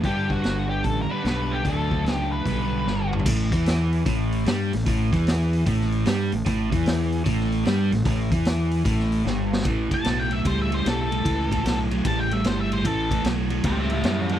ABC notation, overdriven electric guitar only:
X:1
M:4/4
L:1/8
Q:"Swing" 1/4=150
K:Amix
V:1 name="Overdriven electric guitar" clef=bass
[G,,D,G,B,D]4- [G,,D,G,B,D] [G,,D,G,B,D] [G,,D,G,B,D]2 | [D,F,A,D]4 [G,,D,G,B,D]4 | A,, E,3 A,,2 G, A,, | A,, E,3 A,,2 G, A,, |
A,, E,3 A,,2 G, A,, | A,, E,3 A,,2 G,,2 | [A,,E,] [A,,E,] [A,,F,] [A,,F,] [A,,G,] [A,,G,] [A,,G,] [A,,G,] | [A,,E,] [A,,E,] [A,,F,] [A,,F,] [A,,G,] [A,,G,] [A,,G,] [A,,G,] |
[A,,E,] [A,,E,] [A,,F,] [A,,F,] [A,,G,] [A,,G,] [A,,G,] [A,,G,] |]